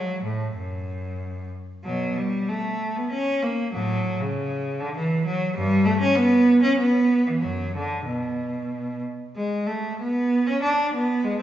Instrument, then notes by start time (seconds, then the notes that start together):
cello
Already playing: F#3
0.23 A2
0.56 F#2
1.85 B2 F#3
2.17 G3
2.48 A3
2.96 B3
3.10 C#4
3.42 A#3
3.73 A2 F#3
4.20 C#3
4.80 D3
4.96 E3
5.25 F#3
5.56 G2 G3
5.85 A3
5.99 C#4
6.16 B3
6.62 C#4
6.78 B3
7.27 E3
7.42 F#2 F#3
7.76 D3
8.07 B2
9.36 G#3
9.67 A3
10.00 B3
10.47 C#4
10.63 D4
10.94 B3
11.24 G#3